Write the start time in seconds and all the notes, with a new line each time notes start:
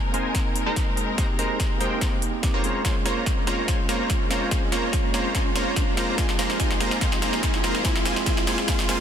Already playing: G#1 G#3 A#3 C4 D#4 A#4 C5 G#5, riser
0.12 G#1 G#3 A#3 C4 D#4 A#4 C5 G#5, closed hi-hat
0.35 kick, snare, closed hi-hat
0.56 closed hi-hat
0.66 G#1 G#3 D#4 A#4 C5 A#5
0.76 kick, snare, closed hi-hat
0.97 closed hi-hat
1.16 G#1 G#3 A#3 C4 D#4 G4 A#4 C5 A#5, kick, snare, closed hi-hat
1.39 G#1 G#3 D#4 A#4 C5 A#5, closed hi-hat
1.60 kick, snare, closed hi-hat
1.78 G#1 G#3 A#3 C4 D#4 G4 A#4 C5 G5, closed hi-hat
2.01 kick, snare, closed hi-hat
2.22 closed hi-hat
2.42 A#3 C4 D#4 G4, kick, snare, closed hi-hat
2.54 A#1 A#3 F4 C5 C#5 A#5
2.63 G#3 A#3 C4 C#4 G#4, closed hi-hat
2.85 A#1 A#3 C#4 F4 C5 C#5 G#5, kick, snare, closed hi-hat
3.05 A#1 A#3 F4 C5 C#5 A#5, snare, closed hi-hat
3.26 kick, snare, closed hi-hat
3.45 A#1 G#3 A#3 C4 C#4 F4 C5 C#5 A#5, snare, closed hi-hat
3.49 F4
3.66 A#1 G#3 A#3 C#4 F4 C5 C#5 G#5, kick, snare, closed hi-hat
3.89 A#1 A#3 F4 C5 C#5 A#5, snare, closed hi-hat
4.10 kick, snare, closed hi-hat
4.28 A#1 G#3 A#3 C4 C#4 F4 C5 C#5 A#5, snare, closed hi-hat
4.32 F4
4.49 A#1 G#3 A#3 C#4 F4 C5 C#5 G#5, kick, snare, closed hi-hat
4.72 A#1 A#3 F4 C5 C#5 A#5, snare, closed hi-hat
4.93 kick, snare, closed hi-hat
5.12 A#1 G#3 A#3 C4 C#4 F4 C5 C#5 A#5, snare, closed hi-hat
5.16 F4
5.33 A#1 G#3 A#3 C#4 F4 C5 C#5 G#5, kick, snare, closed hi-hat
5.56 A#1 A#3 F4 C5 C#5 A#5, snare, closed hi-hat
5.76 kick, snare, closed hi-hat
5.95 F3 G#3 A#3 C4 D#4 F4 G4 G#4 C5 A#5, snare, closed hi-hat
5.99 F4
6.16 G#3 A#3 C4 F4 C5 G#5, kick, snare, closed hi-hat
6.20 F4
6.29 snare
6.39 A#3 F4 C5 A#5, snare, closed hi-hat
6.50 snare
6.58 G#3 A#3 C4 F4 C5 G#5, kick, snare, closed hi-hat
6.62 F4
6.71 snare
6.80 A#3 F4 C5 A#5, snare, closed hi-hat
6.91 snare
6.99 G#3 A#3 C4 F4 C5 G#5, kick, snare, closed hi-hat
7.03 F4
7.12 snare
7.22 A#3 F4 C5 A#5, snare, closed hi-hat
7.33 snare
7.41 G#3 A#3 C4 F4 C5 G#5, kick, snare, closed hi-hat
7.54 snare
7.64 A#3 F4 C5 A#5, snare, closed hi-hat
7.75 snare
7.83 G#3 A#3 C4 F4 C5 G#5, kick, snare, closed hi-hat
7.96 snare
8.04 G#3 A#3 C4 F4 C5 G#5, snare, closed hi-hat
8.08 F4
8.16 snare
8.24 G#3 A#3 C4 F4 C5 G#5, kick, snare, closed hi-hat
8.28 F4
8.37 snare
8.45 G#3 A#3 C4 F4 C5 G#5, snare, closed hi-hat
8.49 F4
8.58 snare
8.66 G#3 A#3 C4 F4 C5 G#5, kick, snare, closed hi-hat
8.79 snare
8.87 G#3 A#3 C4 F4 C5 G#5, snare, closed hi-hat